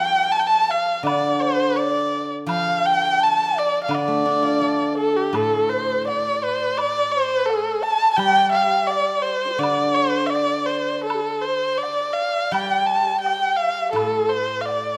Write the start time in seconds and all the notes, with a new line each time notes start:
Already playing: F3 G3 A4 D5 G5
0.00 G5
0.32 A5
0.40 G5
0.47 A5
0.69 F5
1.03 D3 D5, high woodblock
1.42 C5
1.77 D5
2.46 F3 F5, high woodblock
2.86 G5
3.20 A5
3.58 D5
3.84 F5
3.88 D3, high woodblock
3.93 D5
4.08 A3
4.25 D4
4.42 F4
4.61 A4
4.93 A4 C5
4.98 A4
5.16 G4
5.33 A2 A4, high woodblock
5.69 C5
6.05 D5, low woodblock
6.44 C5
6.78 D5, high woodblock
7.12 C5
7.46 A4, low woodblock
7.50 A4
7.83 A5
8.13 A5
8.17 G3 G5, high woodblock
8.52 F5
8.87 D5, low woodblock
9.22 C5
9.45 D4 F4
9.53 G4 A4
9.58 D3 C5 D5
9.63 high woodblock
9.95 C5
10.26 D5 F5
10.33 D5, low woodblock
10.67 C5
11.05 A4
11.10 high woodblock
11.15 G4
11.21 A4
11.42 C5
11.77 D5
11.83 low woodblock
12.14 F5
12.51 G3 G5, high woodblock
12.87 A5
13.21 G5
13.26 low woodblock
13.56 F5
13.92 A2 A4, high woodblock
14.29 C5
14.61 F5
14.66 D5, low woodblock